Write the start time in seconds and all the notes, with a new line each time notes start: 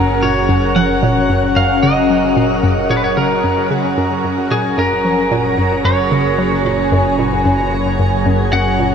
Already playing: F#1 F#2 F#3 C#4 F#4 G#4 A#4 F#5
0.22 A#2 C#5
0.49 F#2
0.76 F3 F#5
1.03 A#2
1.30 F#2
1.56 F#2 F5
1.83 C#3 D#5
2.10 F#3
2.36 A#2
2.63 F#2
2.90 A#2 C#5
2.97 B4
3.04 C#5
3.17 C#3 A#4
3.44 F#2
3.71 C#3
3.97 F#1 F#2 A#5
4.24 F#2
4.51 A#2 G#4
4.78 F#2 A#4
5.05 F3
5.31 A#2
5.58 F#2
5.85 F#2 C#5
6.04 G#5
6.12 C#3
6.38 F#3
6.65 A#2
6.92 F#2
7.19 A#2 B4
7.46 F#2
7.73 C#3
7.99 F#2
8.26 F#2
8.53 F#2 F#5
8.79 A#2